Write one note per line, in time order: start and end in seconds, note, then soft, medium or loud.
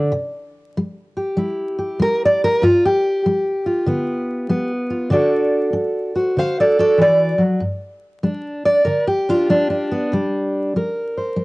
0.00 0.12 D3 medium
0.00 0.12 D4 soft
0.12 0.70 C3 medium
0.77 1.34 G3 medium
1.17 1.77 G4 soft
1.37 1.95 G3 medium
1.37 2.60 E4 soft
1.79 2.59 G4 soft
2.00 2.57 G3 medium
2.00 2.21 A#4 loud
2.25 2.43 D5 medium
2.44 2.63 A#4 loud
2.62 3.20 G2 medium
2.62 2.83 F4 loud
2.85 4.71 G4 medium
3.26 3.83 G3 medium
3.66 4.89 F4 soft
3.86 4.44 D3 medium
3.86 4.49 B3 soft
4.49 5.07 G3 medium
4.49 5.12 B3 medium
4.90 5.09 F4 soft
5.10 5.69 D3 medium
5.10 5.72 D4 medium
5.10 6.14 F#4 medium
5.10 6.18 A4 soft
5.10 6.18 D5 medium
5.73 6.31 D4 medium
6.15 6.78 F#4 soft
6.15 6.37 C5 medium
6.15 6.38 F5 medium
6.37 6.95 D3 medium
6.37 6.58 C5 medium
6.37 6.58 F5 loud
6.60 6.78 A4 medium
6.60 6.79 D5 medium
6.79 7.59 F#4 soft
6.79 6.99 A4 medium
6.79 7.00 D5 loud
6.98 7.38 E3 medium
6.98 7.41 D5 loud
7.38 7.60 F#3 medium
7.60 8.19 G2 medium
8.23 8.82 G3 medium
8.23 8.65 D4 medium
8.65 8.84 D4 soft
8.65 9.07 D5 medium
8.85 9.45 D3 medium
8.85 9.06 A#4 medium
9.07 9.91 G4 medium
9.29 9.49 D4 medium
9.29 9.91 F4 medium
9.49 10.07 G3 medium
9.49 9.69 D4 medium
9.70 10.74 D4 medium
9.91 10.12 B3 soft
10.12 10.70 C3 medium
10.12 10.76 G3 medium
10.76 11.33 G3 medium
10.76 11.45 A#4 soft
11.18 11.45 C5 soft
11.36 11.45 G3 medium